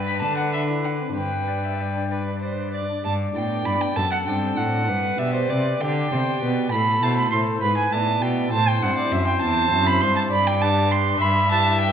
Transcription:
Already playing: G2 B4 D5
0.06 D4 B5
0.21 D3 A5
0.37 D5 F#5
0.52 D4 E5
0.68 E4
0.84 D4 F#5
1.00 C4
1.16 G2 B4 G5
1.32 B4
1.48 D5
1.65 E5
1.80 D5
1.95 D4
2.10 B4 D5
2.27 B4
2.41 C5 D5
2.58 B4
2.74 D5
2.90 D4
3.04 G2 D5 A5
3.35 A2 B3 D4 D5 G5
3.65 G2 B5
3.81 G5
3.95 F#2 A4 A5
4.11 F#5
4.26 G2 C4 D4 D5 G5
4.57 A2 F#5
4.87 G2 B4
5.18 B2 B3 G4 D5 E5
5.34 C5
5.50 C3 D5
5.81 D3 D5 G5
6.12 C3 B3 G4 C5 D5
6.41 B2 B4
6.71 A2 A4 B5
7.02 B2 A3 E4 C5 A5
7.17 B5
7.31 A2 C6
7.62 G#2 B4 B5
7.77 G#5
7.92 A2 B3 E4 D5 A5
8.22 B2 G5
8.52 A2 C5 A5
8.68 G5
8.82 G2 C4 E4 C5 F#5
8.97 D5
9.12 F#2 E5
9.27 G5
9.42 E2 A5
9.71 F#2 C4 E4 C5
9.86 B5
10.01 G2 C6
10.16 A5
10.31 G2 D5 B5
10.47 G5
10.61 D4 G4 B4 A5
10.91 C6
11.20 G2 E5 B5
11.50 E4 G4 B4 A5
11.81 G5

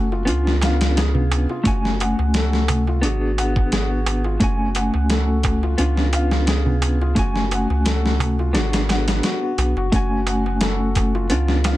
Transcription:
Already playing: F#1 A3 C#4 F#4 A4 F#5 G#5
0.12 F4, darbuka tek
0.25 C#2 B3 C#4 D4 F4, closed hi-hat, darbuka tek
0.47 snare
0.61 F5, snare, closed hi-hat, darbuka tek
0.81 snare, closed hi-hat, darbuka tek
0.96 G#4, snare, closed hi-hat, darbuka tek
1.15 darbuka dum
1.31 closed hi-hat, darbuka tek
1.49 F4, darbuka tek
1.63 F#1 A3 C#4 F#4 G#5, kick, closed hi-hat, darbuka tek
1.85 snare
2.00 F#5, closed hi-hat, darbuka tek
2.18 C#2, darbuka tek
2.34 A4, snare, closed hi-hat, darbuka tek
2.53 snare
2.68 closed hi-hat, darbuka tek, darbuka dum
2.87 F4, darbuka tek
3.02 G#1 B3 D4 F#4 G#4, closed hi-hat, darbuka tek
3.38 F#5, closed hi-hat, darbuka tek
3.56 kick, darbuka tek
3.72 G#4, snare, closed hi-hat, darbuka tek
4.06 closed hi-hat, darbuka tek
4.24 F4, darbuka tek
4.40 F#1 A3 C#4 F#4 G#5, kick, closed hi-hat, darbuka tek
4.75 F#5, closed hi-hat, darbuka tek
4.94 C#2, darbuka tek
5.10 A4, snare, closed hi-hat, darbuka tek
5.43 kick, closed hi-hat, darbuka tek
5.63 F4, darbuka tek
5.78 C#2 B3 C#4 D4 F4, closed hi-hat, darbuka tek
5.97 snare
6.13 F5, closed hi-hat, darbuka tek
6.31 snare, darbuka tek
6.47 G#4, snare, closed hi-hat, darbuka tek
6.66 darbuka dum
6.82 closed hi-hat, darbuka tek
7.01 F4, darbuka tek
7.15 F#1 A3 C#4 F#4, kick, closed hi-hat, darbuka tek
7.19 G#5
7.36 snare
7.51 F#5, closed hi-hat, darbuka tek
7.70 C#2, darbuka tek
7.85 A4, snare, closed hi-hat, darbuka tek
8.06 snare
8.19 closed hi-hat, darbuka tek, darbuka dum
8.39 F4, darbuka tek
8.53 G#1 B3 D4 F#4 G#4, snare, closed hi-hat, darbuka tek
8.73 snare, closed hi-hat
8.89 F#5, snare, closed hi-hat, darbuka tek
9.08 snare, closed hi-hat, darbuka tek
9.23 F#4, snare, closed hi-hat, darbuka tek
9.42 F#4
9.58 B1, closed hi-hat, darbuka tek
9.76 F#1 F#4, darbuka tek
9.92 F#1 A3 C#4 F#4 G#5, kick, closed hi-hat, darbuka tek
10.27 F#5, closed hi-hat, darbuka tek
10.46 darbuka tek
10.61 A4, snare, closed hi-hat, darbuka tek
10.95 kick, closed hi-hat, darbuka tek
11.15 F4, darbuka tek
11.30 C#2 B3 C#4 D4 F4, closed hi-hat, darbuka tek
11.34 F4
11.48 snare
11.64 F5, snare, closed hi-hat, darbuka tek

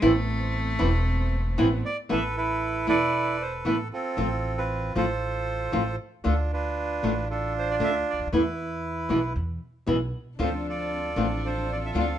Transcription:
0.01 A1 E3 A3 B3 C4 E4
0.79 E1 E3 A3 B3 C4 E4
1.58 A1 E3 A3 B3 C4 E4
1.86 D5
2.09 A1 E3 A3 B3 E4 A4 B4 E5
2.37 E4 B4
2.87 E1 E3 A3 B3 E4 A4 B4 D5
3.42 C5
3.65 A1 E3 A3 B3 E4 B4
3.93 C4 F4 A4
4.17 A1 F3 A3 C4 F4
4.58 F4 B4
4.95 A1 F3 A3 C4 F4 A4 C5
5.72 A1 F3 A3 C4 F4
6.24 D2 D3 A3 D4 F4 A4
6.53 D4 F4 B4
7.03 A1 D3 A3 D4 F4
7.30 D4 F4 A4
7.59 C5
7.71 D5
7.80 D2 D3 A3 D4 F4 E5
8.10 C#2 D5
8.19 D2
8.27 D#2
8.32 E2 E3 A3 B3 E4 B4
9.09 B1 B2 E3 G#3 B3 E4
9.36 E2
9.87 B1 B2 E3 G#3 B3 E4
10.39 D2 D3 F3 A3 C4 D4 F4 A4 C5
10.69 F4 A4 D5
11.16 A1 D3 F3 A3 C4 D4 F4
11.44 F4 A4 C5
11.73 D5
11.86 E5
11.94 D2 D3 F3 A3 C4 D4 F4
11.99 F5

